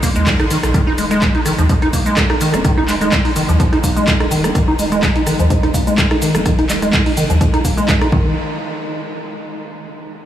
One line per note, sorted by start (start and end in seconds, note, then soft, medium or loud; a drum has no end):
0.03 0.10 A#3 medium
0.03 kick medium
0.03 snare medium
0.03 closed hi-hat medium
0.03 open hi-hat loud
0.03 shaker medium
0.15 0.35 D#2 medium
0.15 0.28 G#3 loud
0.15 closed hi-hat soft
0.15 shaker soft
0.26 0.31 F#3 medium
0.26 kick loud
0.26 cross-stick medium
0.26 snare loud
0.26 clap loud
0.26 closed hi-hat medium
0.26 shaker soft
0.39 0.49 G#1 medium
0.39 0.46 D#4 medium
0.39 cross-stick medium
0.39 closed hi-hat soft
0.50 0.58 D#3 medium
0.50 closed hi-hat medium
0.50 open hi-hat loud
0.50 shaker medium
0.63 0.72 A#1 medium
0.63 cross-stick medium
0.63 snare soft
0.63 closed hi-hat medium
0.63 shaker soft
0.74 1.31 D#1 loud
0.74 0.81 D#3 medium
0.74 kick loud
0.74 cross-stick medium
0.74 closed hi-hat medium
0.74 shaker soft
0.87 0.93 D#4 loud
0.98 1.05 G#3 medium
0.98 open hi-hat loud
0.98 shaker medium
1.11 1.23 G#3 loud
1.11 cross-stick soft
1.11 closed hi-hat medium
1.11 shaker soft
1.22 1.26 F#3 medium
1.22 kick loud
1.22 clap loud
1.22 closed hi-hat medium
1.22 shaker soft
1.35 1.41 D#4 medium
1.35 closed hi-hat soft
1.46 1.56 F#1 medium
1.46 1.53 D#3 medium
1.46 cross-stick medium
1.46 open hi-hat loud
1.46 shaker medium
1.58 1.68 D#2 medium
1.58 1.62 F3 medium
1.58 closed hi-hat soft
1.58 shaker soft
1.69 1.74 F3 medium
1.69 kick loud
1.69 closed hi-hat medium
1.69 shaker soft
1.82 1.91 D#1 medium
1.82 1.88 D#4 loud
1.82 cross-stick soft
1.82 closed hi-hat soft
1.93 2.00 A#3 medium
1.93 kick medium
1.93 open hi-hat loud
1.93 shaker medium
2.06 2.19 G#3 loud
2.06 closed hi-hat soft
2.06 shaker soft
2.17 2.21 F#3 medium
2.17 kick loud
2.17 cross-stick medium
2.17 clap loud
2.17 closed hi-hat medium
2.17 shaker soft
2.30 2.36 D#4 medium
2.30 cross-stick medium
2.30 closed hi-hat soft
2.41 2.55 D#3 medium
2.41 open hi-hat loud
2.41 shaker medium
2.54 3.09 D#1 medium
2.54 2.60 D#4 medium
2.54 cross-stick medium
2.54 closed hi-hat medium
2.54 shaker soft
2.65 2.72 D#3 medium
2.65 kick loud
2.65 cross-stick medium
2.65 closed hi-hat medium
2.65 shaker soft
2.77 2.84 D#4 loud
2.88 2.96 G#3 medium
2.88 clap medium
2.88 open hi-hat loud
2.88 shaker medium
3.01 3.14 G#3 loud
3.01 cross-stick soft
3.01 closed hi-hat medium
3.01 shaker soft
3.12 3.17 F#3 medium
3.12 kick loud
3.12 clap loud
3.12 closed hi-hat medium
3.12 shaker soft
3.25 3.31 D#4 medium
3.25 open hi-hat medium
3.36 3.47 F#1 medium
3.36 3.43 D#3 medium
3.36 open hi-hat loud
3.36 shaker medium
3.49 3.58 D#2 medium
3.49 3.52 F3 medium
3.49 closed hi-hat soft
3.49 shaker soft
3.60 3.64 F3 medium
3.60 kick loud
3.60 closed hi-hat medium
3.60 shaker soft
3.73 3.79 D#4 loud
3.73 cross-stick soft
3.73 closed hi-hat soft
3.83 3.94 D#1 medium
3.83 3.91 A#3 medium
3.83 kick medium
3.83 open hi-hat loud
3.83 shaker medium
3.96 4.09 G#3 loud
3.96 closed hi-hat soft
3.96 shaker soft
4.07 4.12 F#3 medium
4.07 kick loud
4.07 cross-stick medium
4.07 clap loud
4.07 closed hi-hat medium
4.07 shaker soft
4.20 4.29 D#1 medium
4.20 4.26 D#4 medium
4.20 cross-stick medium
4.20 closed hi-hat soft
4.31 4.51 D#1 medium
4.31 4.46 D#3 medium
4.31 open hi-hat loud
4.31 shaker medium
4.44 4.50 D#4 medium
4.44 cross-stick medium
4.44 closed hi-hat medium
4.44 shaker soft
4.55 5.12 D#1 medium
4.55 4.62 D#3 medium
4.55 kick loud
4.55 cross-stick medium
4.55 closed hi-hat medium
4.55 shaker soft
4.68 4.74 D#4 loud
4.79 4.86 G#3 medium
4.79 open hi-hat loud
4.79 shaker medium
4.92 5.04 G#3 loud
4.92 cross-stick soft
4.92 closed hi-hat soft
4.92 shaker soft
5.03 5.07 F#3 medium
5.03 kick loud
5.03 clap loud
5.03 closed hi-hat medium
5.03 shaker soft
5.16 5.22 D#4 medium
5.16 closed hi-hat soft
5.27 5.37 F#1 medium
5.27 5.34 D#3 medium
5.27 cross-stick medium
5.27 open hi-hat loud
5.27 shaker medium
5.39 5.49 D#2 medium
5.39 5.43 F3 medium
5.39 closed hi-hat soft
5.39 shaker soft
5.50 5.55 F3 medium
5.50 kick loud
5.50 closed hi-hat medium
5.50 shaker soft
5.63 5.72 D#1 medium
5.63 5.69 D#4 loud
5.63 cross-stick soft
5.63 closed hi-hat soft
5.74 5.81 A#3 medium
5.74 kick medium
5.74 open hi-hat loud
5.74 shaker medium
5.87 6.00 G#3 loud
5.87 closed hi-hat soft
5.87 shaker soft
5.98 6.02 F#3 medium
5.98 kick loud
5.98 cross-stick medium
5.98 clap loud
5.98 closed hi-hat medium
5.98 shaker soft
6.11 6.17 D#4 medium
6.11 cross-stick medium
6.11 closed hi-hat soft
6.22 6.36 D#3 medium
6.22 open hi-hat loud
6.22 shaker medium
6.35 6.90 D#1 medium
6.35 6.41 D#4 medium
6.35 cross-stick medium
6.35 closed hi-hat medium
6.35 shaker soft
6.46 6.53 D#3 medium
6.46 kick loud
6.46 cross-stick medium
6.46 closed hi-hat medium
6.46 shaker soft
6.59 6.65 D#4 loud
6.59 closed hi-hat soft
6.70 6.77 G#3 medium
6.70 clap medium
6.70 open hi-hat loud
6.70 shaker medium
6.82 6.95 G#3 loud
6.82 cross-stick soft
6.82 closed hi-hat medium
6.82 shaker soft
6.93 6.98 F#3 medium
6.93 kick loud
6.93 clap loud
6.93 closed hi-hat medium
6.93 shaker soft
7.06 7.12 D#4 medium
7.06 open hi-hat medium
7.17 7.28 F#1 medium
7.17 7.24 D#3 medium
7.17 open hi-hat loud
7.17 shaker medium
7.30 7.39 D#2 medium
7.30 7.34 F3 medium
7.30 closed hi-hat soft
7.30 shaker soft
7.41 7.45 F3 medium
7.41 kick loud
7.41 closed hi-hat medium
7.41 shaker soft
7.53 7.60 D#4 loud
7.53 cross-stick soft
7.53 closed hi-hat soft
7.65 7.75 D#1 medium
7.65 7.72 A#3 medium
7.65 kick medium
7.65 open hi-hat loud
7.65 shaker medium
7.77 7.90 G#3 loud
7.77 closed hi-hat soft
7.77 shaker soft
7.88 7.93 F#3 medium
7.88 kick loud
7.88 cross-stick medium
7.88 clap loud
7.88 closed hi-hat medium
7.88 shaker soft
8.01 8.07 D#4 medium
8.01 cross-stick medium
8.01 closed hi-hat soft
8.12 8.34 D#1 medium
8.12 8.34 D#3 loud
8.12 kick loud